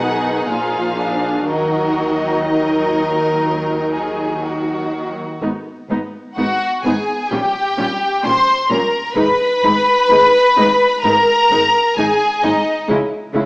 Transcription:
Already playing: B1 B2 D#4 G#4 F#5
0.02 D#3
0.49 A#1 A#2 F3 F4 F5
0.99 D4
1.47 D#2 D#3 F#3 D#4 F#4 A#4 D#5
2.46 A#4
3.95 G#4
4.43 F#4
5.41 G#1 G#2 B3 D#4
5.90 G#1 G#2 B3 D#4
6.36 G#1 G#2 B3 D#4 F#4 F#5
6.84 G#1 G#2 B3 D#4 G#4 G#5
7.31 A#1 A#2 G3 C#4 G4 G5
7.78 A#1 A#2 G3 C#4
8.23 A#1 A#2 G3 C#4 C5 C6
8.70 A#1 A#2 G3 C#4 A#4 A#5
9.15 G#1 G#2 G#3 D#4 B4 B5
9.63 G#1 G#2 G#3 D#4
10.10 G#1 G#2 G#3 D#4
10.57 G#1 G#2 G#3 D#4
11.03 G#1 G#2 G#3 D#4 A#4 A#5
11.50 G#1 G#2 G#3 D#4
11.97 G#1 G#2 G#3 D#4 G#4 G#5
12.43 G#1 G#2 G#3 D#4 D#5
12.88 C#2 C#3 G#3 E4
13.33 C#2 C#3 G#3 E4

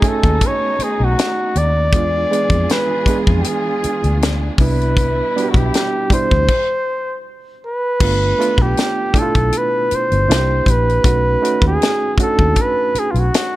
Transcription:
Already playing: A3 B3 C#4 D#4 F#4 G#4
0.02 A3 C#4 D#4 G#5, muted fingered electric bass stroke, kick, closed hi-hat
0.08 A4
0.23 D#2, kick, closed hi-hat
0.41 kick, closed hi-hat
0.47 C#5
0.79 muted fingered electric bass stroke, closed hi-hat
0.83 G#4
1.00 B1
1.04 F#4
1.19 snare, closed hi-hat
1.56 D#2 D5, closed hi-hat
1.92 E2 E3 G#3 B3 D4 F4 G#4, kick, closed hi-hat
2.31 G#3 B3 D4 G#4, closed hi-hat
2.50 F2, kick, closed hi-hat
2.69 B4, snare, closed hi-hat
3.06 G#3 B3 D4 G#4, muted fingered electric bass stroke, kick, closed hi-hat
3.27 F2, kick
3.40 G4
3.44 G#4, closed hi-hat
3.84 muted fingered electric bass stroke, closed hi-hat
4.04 D2, closed hi-hat
4.22 snare, closed hi-hat
4.58 C2 B2 G3 B3 D4 E4 B4, kick, open hi-hat
4.81 closed hi-hat
4.97 kick, closed hi-hat
5.36 G3 B3 D4 F#4, closed hi-hat
5.44 G4
5.50 F#4, kick
5.55 B1 G4, closed hi-hat
5.74 snare, closed hi-hat
6.10 B2 G3 D4 E4 C5, muted fingered electric bass stroke, kick, closed hi-hat
6.31 D2, kick
6.49 kick, crash
7.67 B4
8.00 G1 A3 B3 D4 F4, kick, crash
8.39 A3 B3 D4 F4, closed hi-hat
8.58 B1, kick
8.62 G4
8.77 snare, closed hi-hat
9.14 B2 A3 D4 E4, muted fingered electric bass stroke, kick, closed hi-hat
9.19 F4 A4
9.35 B1, kick, closed hi-hat
9.53 closed hi-hat
9.58 B4
9.91 muted fingered electric bass stroke, closed hi-hat
9.95 C5
10.12 G1, closed hi-hat
10.28 C2 A#3 D4 E4 F4, snare, closed hi-hat
10.36 G4
10.66 A#1 B4, kick, closed hi-hat
10.89 closed hi-hat
11.04 B1 A3 C#4 D#4 F#4, kick, closed hi-hat
11.42 A3 C#4 D#4 F#4, closed hi-hat
11.62 D#2, kick
11.67 G#4
11.82 snare, closed hi-hat
12.18 A3 C#4 D4 F#4, muted fingered electric bass stroke, kick, closed hi-hat
12.22 A4
12.26 D#4
12.39 D#2, kick
12.56 kick, closed hi-hat
12.62 B4
12.95 muted fingered electric bass stroke, closed hi-hat
12.99 G#4
13.11 B1 F4
13.15 F#4, closed hi-hat
13.34 snare, closed hi-hat

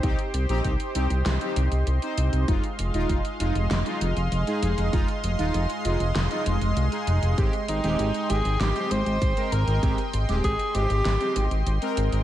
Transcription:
Already playing: G4 C5 D#5 C6
0.03 C2 C4 D#4 G4, kick, closed hi-hat
0.19 closed hi-hat
0.34 C2, closed hi-hat
0.49 A#1 C4 D#4 G4, closed hi-hat
0.64 C2, kick, closed hi-hat
0.80 closed hi-hat
0.95 C2 C4 D#4 G4, closed hi-hat
1.10 C2, closed hi-hat
1.26 C2, snare, closed hi-hat
1.41 C4 D#4 G4, closed hi-hat
1.56 C2, closed hi-hat
1.72 C2, closed hi-hat
1.87 C2, closed hi-hat
2.02 C4 D#4 C5, closed hi-hat
2.18 C2, closed hi-hat
2.33 C2, closed hi-hat
2.48 F1 G#3 D#4 F4 F5, kick, closed hi-hat
2.64 closed hi-hat
2.79 F1, closed hi-hat
2.94 D#1 G#3 D#4 F4, closed hi-hat
3.09 F1, kick, closed hi-hat
3.25 closed hi-hat
3.40 F1 G#3 D#4 F4, closed hi-hat
3.55 F1, closed hi-hat
3.71 F1, snare, closed hi-hat
3.86 G#3 D#4 F4, closed hi-hat
4.01 F1, closed hi-hat
4.17 F1, closed hi-hat
4.32 F1, closed hi-hat
4.47 G#3 D#4 G#4, closed hi-hat
4.63 F1, closed hi-hat
4.78 F1, closed hi-hat
4.93 F1 G#3 D#4 F4, kick, closed hi-hat
5.08 closed hi-hat
5.24 F1, closed hi-hat
5.39 D#1 G#3 D#4 F4, closed hi-hat
5.54 F1, closed hi-hat
5.70 closed hi-hat
5.85 F1 G#3 D#4 F4, closed hi-hat
6.00 F1, closed hi-hat
6.15 F1, snare, closed hi-hat
6.31 G#3 D#4 F4, closed hi-hat
6.46 F1, closed hi-hat
6.61 F1, closed hi-hat
6.77 C2, closed hi-hat
6.92 G#3 D#4 G#4, closed hi-hat
7.07 F1, closed hi-hat
7.23 F1, closed hi-hat
7.38 G#1 G#3 C4 G4 G5, kick, closed hi-hat
7.53 closed hi-hat
7.68 G#1 D#4, closed hi-hat
7.84 D#1 G#3 C4 G4, closed hi-hat
7.99 G#1, closed hi-hat
8.14 closed hi-hat
8.30 G#1 G#3 C4 G4 G#4, closed hi-hat
8.45 G#1, closed hi-hat
8.60 G#1 G4, snare, closed hi-hat
8.76 G#3 C4 G4, closed hi-hat
8.91 G#1 C5, closed hi-hat
9.06 G#1, closed hi-hat
9.22 G#1, kick, closed hi-hat
9.37 G#3 C4 A#4, closed hi-hat
9.52 G#1 A#4, closed hi-hat
9.68 G#1, closed hi-hat
9.83 G#1 G#3 C4 G4, kick, closed hi-hat
9.98 closed hi-hat
10.13 G#1, closed hi-hat
10.29 D#1 G#3 C4 G4, closed hi-hat
10.44 G#1 G#4, kick, closed hi-hat
10.59 closed hi-hat
10.75 G#1 G#3 C4 G4, closed hi-hat
10.90 G#1, closed hi-hat
11.05 G#1, snare, closed hi-hat
11.21 G#3 C4 G4, closed hi-hat
11.36 G#1, closed hi-hat
11.51 G#1, closed hi-hat
11.67 G#1, closed hi-hat
11.82 G#3 C4 A#4, closed hi-hat
11.97 G#1, closed hi-hat
12.12 G#1, closed hi-hat

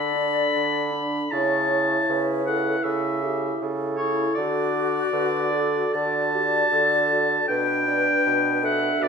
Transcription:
Already playing: D3 D4 A4 D5 B5
0.16 D4
0.55 D3
0.93 D4
1.31 C#3 E4 C#5 A5
1.71 E4
2.09 C#3 B4
2.46 E4 A4 F#5
2.83 C#3 A4 E5
3.23 E4 G4
3.62 C#3 A4
3.97 E4 C#5
4.35 D3 F#4 D5
4.75 F#4
5.12 D3 B4
5.52 F#4 A4
5.93 D3 F#4 D5 A5
6.34 F#4 G4
6.72 D3 A4
7.12 F#4
7.48 B2 D4 B4 G5
7.88 D4 D5
8.26 B2 B4
8.63 D4 A4 E5 F#5
9.00 B2 F#4 D5

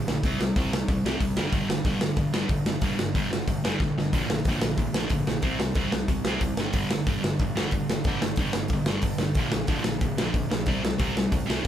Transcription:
0.06 A#1 A#2 D3, snare
0.23 C2 C3 G3 C4, kick, open hi-hat
0.39 C2 C3 G3, snare
0.56 C2 C3 G3 C4, kick, open hi-hat
0.71 C2 C3 G3, snare
0.88 C2 C3 G3, kick, open hi-hat
1.03 C2 C3 G3 C4, snare
1.20 C2 C3 G3, kick, open hi-hat
1.37 G1 G2 D3 G3, snare
1.52 G1 G2 D3 G3, kick, open hi-hat
1.69 G1 G2 D3, snare
1.84 G1 G2 D3 G3, kick, open hi-hat
2.00 G1 G2 D3, snare
2.16 G1 G2 D3, kick, open hi-hat
2.32 G1 G2 D3 G3, snare
2.48 G1 G2 D3, kick, open hi-hat
2.65 G1 G2 D3, snare
2.81 G1 G2 D3 G3, kick, open hi-hat
2.98 G1 G2 D3, snare
3.15 G1 G2 D3 G3, kick, open hi-hat
3.30 G1 G2 D3, snare
3.47 G1 G2 D3, kick, open hi-hat
3.63 G1 G2 D3 G3, snare
3.80 G1 G2 D3, kick, snare
3.97 G1 G2 D3, snare
4.13 A#1 A#2 D3 F3, kick, open hi-hat
4.28 A#1 A#2 D3, snare
4.45 A#1 A#2 D3 F3, kick, open hi-hat
4.61 A#1 A#2 D3, snare
4.78 A#1 A#2 D3, kick, open hi-hat
4.94 A#1 A#2 D3 F3, snare
5.10 A#1 A#2 D3, kick, open hi-hat
5.27 A#1 A#2 D3, snare
5.42 C2 C3 G3 C4, kick, open hi-hat
5.59 C2 C3 G3, snare
5.75 C2 C3 G3 C4, kick, open hi-hat
5.92 C2 C3 G3, snare
6.08 C2 C3 G3, kick, open hi-hat
6.25 C2 C3 G3 C4, snare
6.41 C2 C3 G3, kick, open hi-hat
6.57 G1 G2 D3 G3, snare
6.73 G1 G2 D3 G3, kick, open hi-hat
6.90 G1 G2 D3, snare
7.06 G1 G2 D3 G3, kick, open hi-hat
7.22 G1 G2 D3, snare
7.39 G1 G2 D3, kick, open hi-hat
7.55 G1 G2 D3 G3, snare
7.71 G1 G2 D3, kick, open hi-hat
7.88 G1 G2 D3, snare
8.04 G1 G2 D3 G3, kick, open hi-hat
8.22 G1 G2 D3, snare
8.36 G1 G2 D3, kick, open hi-hat
8.40 G3
8.53 G1 G2 D3, snare
8.68 G1, kick, open hi-hat
8.73 G2 D3
8.86 G1 G2 D3 G3, snare
9.02 G1 G2 D3, kick, open hi-hat
9.18 G1 G2 D3, snare
9.35 A#1 A#2 D3 F3, kick, open hi-hat
9.52 A#1 A#2 D3, snare
9.67 A#1 A#2 D3 F3, kick, open hi-hat
9.84 A#1 A#2 D3, snare
10.00 A#1 A#2 D3, kick, open hi-hat
10.18 A#1 A#2 D3 F3, snare
10.34 A#1 A#2 D3, kick, open hi-hat
10.50 A#1 A#2 D3, snare
10.66 C2 C3 G3 C4, kick, open hi-hat
10.83 C2 C3 G3, snare
10.98 C2 C3 G3 C4, kick, open hi-hat
11.16 C2 C3 G3, snare
11.32 C2 C3 G3, kick, open hi-hat
11.47 C2 C3 G3 C4, snare
11.64 F1 C3 G3

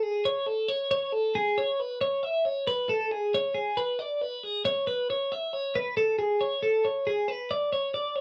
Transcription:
0.03 G#4
0.25 C#5
0.46 A4
0.68 C#5
0.91 C#5
1.13 A4
1.35 G#4
1.58 C#5
1.80 B4
2.01 C#5
2.23 E5
2.45 C#5
2.67 B4
2.89 A4
3.11 G#4
3.34 C#5
3.54 G#4
3.77 B4
3.99 D5
4.22 B4
4.43 G#4
4.65 C#5
4.87 B4
5.10 C#5
5.32 E5
5.53 C#5
5.75 B4
5.97 A4
6.19 G#4
6.41 C#5
6.63 A4
6.85 C#5
7.07 G#4
7.28 B4
7.51 D5
7.73 C#5
7.94 D5
8.16 C#5

